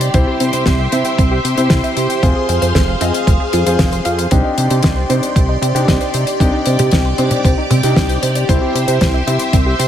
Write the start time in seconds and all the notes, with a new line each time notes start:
Already playing: C4 D4 D#4 G4 D5 C6
0.01 D5, closed hi-hat
0.14 C2 C4 E4 G4 C5 E5 C6, kick, closed hi-hat
0.27 G4
0.40 C3 C4, closed hi-hat
0.53 C3 C5, closed hi-hat
0.66 C2 C4, kick, snare, closed hi-hat
0.79 E5
0.92 C3 C4 E4 G4 E5, closed hi-hat
1.05 G5, closed hi-hat
1.18 C2 C4, kick, closed hi-hat
1.31 G4
1.45 C3 C4, closed hi-hat
1.58 C3 C4 E4 G4 C5, closed hi-hat
1.70 C2 C4, kick, snare, closed hi-hat
1.84 E5, closed hi-hat
1.97 C3 C4, closed hi-hat
2.10 G5, closed hi-hat
2.23 F1 C4 F4 G#4 C5 F5, kick, closed hi-hat
2.36 G#4
2.49 F2 C4, closed hi-hat
2.62 F2 C5, closed hi-hat
2.75 F1 C4, kick, snare, closed hi-hat
2.88 F5
3.01 F2 C4 F4 G#4 D#5, closed hi-hat
3.14 G#5, closed hi-hat
3.27 F1 C4, kick, closed hi-hat
3.40 G#4
3.53 F2 F4, closed hi-hat
3.66 F2 C4 F4 G#4 C5, closed hi-hat
3.79 F1 F5, kick, snare, closed hi-hat
3.92 C5, closed hi-hat
4.05 F2 F5, closed hi-hat
4.18 C5, closed hi-hat
4.31 C2 C4 D4 D#4 G4 D5 C6, kick, closed hi-hat
4.44 D#4
4.57 C3 C4, closed hi-hat
4.70 C3 G4, closed hi-hat
4.83 C2 C4, kick, snare, closed hi-hat
4.96 C5
5.09 C3 C4 D4 D#4 C5, closed hi-hat
5.23 D5, closed hi-hat
5.36 C2 C4, kick, closed hi-hat
5.49 D#4
5.62 C3 C4, closed hi-hat
5.75 C3 C4 D4 D#4 G4, closed hi-hat
5.88 C2 C4, kick, snare, closed hi-hat
6.01 C5, closed hi-hat
6.14 C3 C4, closed hi-hat
6.27 D5, closed hi-hat
6.40 C2 C4 D4 D#4 G4 D6, kick, closed hi-hat
6.53 D#4
6.66 C3 C4, closed hi-hat
6.79 C3 G4, closed hi-hat, high tom
6.91 C2 C4, kick, snare, closed hi-hat
7.05 C5
7.18 C3 C4 D4 D#4 C5, closed hi-hat
7.31 D5, closed hi-hat, high tom
7.44 C2 C4, kick, closed hi-hat
7.57 D#4
7.70 C3 C4, closed hi-hat, high tom
7.83 C3 C4 D4 D#4 G4, closed hi-hat
7.96 C2 C4, kick, snare, closed hi-hat
8.09 C5, closed hi-hat
8.22 C3 C4, closed hi-hat
8.35 D5, closed hi-hat
8.49 C2 C4 E4 G4 C5 E5 C6, kick, closed hi-hat
8.62 G4
8.75 C3 C4, closed hi-hat
8.88 C3 C5, closed hi-hat
9.01 C2 C4, kick, snare, closed hi-hat
9.14 E5
9.27 C3 C4 E4 G4 E5, closed hi-hat
9.39 G5, closed hi-hat
9.53 C2 C4, kick, closed hi-hat
9.66 G4
9.79 C3 C4, closed hi-hat